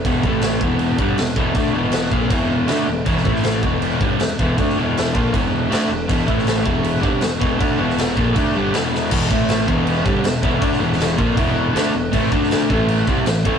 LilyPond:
<<
  \new Staff \with { instrumentName = "Overdriven electric guitar" } { \clef bass \time 4/4 \key e \minor \tempo 4 = 159 <e, b, e>8 <a, e a>4 <e, b, e>4 <g, d g>8 <e, b,>8 <e, b, e>8 | <d a d'>8 <e, b, e>4 <ais, f ais>8 <e, b, e>4 <d a d'>8 <e, b,>8 | <e, b, e>8 <a, e a>4 <e, b, e>4 <g, d g>8 <e, b,>8 <e, b, e>8 | <d a d'>8 <e, b, e>4 <ais, f ais>8 <e, b, e>4 <d a d'>8 <e, b,>8 |
<e, b, e>8 <a, e a>4 <e, b, e>4 <g, d g>8 <e, b,>8 <e, b, e>8 | <d a d'>8 <e, b, e>4 <ais, f ais>8 <d a d'>8 <g, d g>8 <e, b, e>4 | <e, b, e>8 <a, e a>4 <e, b, e>4 <g, d g>8 <e, b,>8 <e, b, e>8 | <d a d'>8 <e, b, e>4 <ais, f ais>8 <e, b, e>4 <d a d'>8 <e, b,>8 |
<a, e a>8 <d a d'>4 <a, e a>4 <c g c'>8 <a, e>8 <a, e a>8 | }
  \new Staff \with { instrumentName = "Picked electric bass" } { \clef bass \time 4/4 \key e \minor e,,8 a,,4 e,,4 g,,8 e,,8 e,,8 | d,8 e,,4 ais,,8 e,,4 d,8 e,,8 | e,,8 a,,4 e,,4 g,,8 e,,8 e,,8 | d,8 e,,4 ais,,8 e,,4 d,8 e,,8 |
e,,8 a,,4 e,,4 g,,8 e,,8 e,,8 | d,8 e,,4 ais,,8 d,8 g,,8 e,,4 | e,,8 a,,4 e,,4 g,,8 e,,8 e,,8 | d,8 e,,4 ais,,8 e,,4 d,8 e,,8 |
a,,8 d,4 a,,4 c,8 a,,8 a,,8 | }
  \new DrumStaff \with { instrumentName = "Drums" } \drummode { \time 4/4 <cymc bd>8 bd8 <cymc sn>8 bd8 cymc8 bd8 <cymc sn>8 bd8 | <cymc bd>4 <cymc sn>8 bd8 <cymc bd>4 <cymc sn>4 | <cymc bd>16 sn16 bd16 sn16 <cymc sn>8 bd8 cymc8 bd8 <cymc sn>8 bd8 | <cymc bd>16 sn8. <cymc sn>8 bd8 <cymc bd>4 <cymc sn>4 |
<cymc bd>8 bd16 sn16 <cymc sn>8 bd8 cymc8 bd8 <cymc sn>8 bd8 | <cymc bd>8. sn16 <cymc sn>8 bd8 <cymc bd>4 <cymc sn>8 sn8 | <cymc bd>8 bd8 <cymc sn>8 bd8 cymc8 bd8 <cymc sn>8 bd8 | <cymc bd>16 sn8 sn16 <cymc sn>8 bd8 <cymc bd>4 <cymc sn>4 |
<cymc bd>8 bd16 sn16 <cymc sn>8 bd8 cymc8 bd8 <cymc sn>8 bd8 | }
>>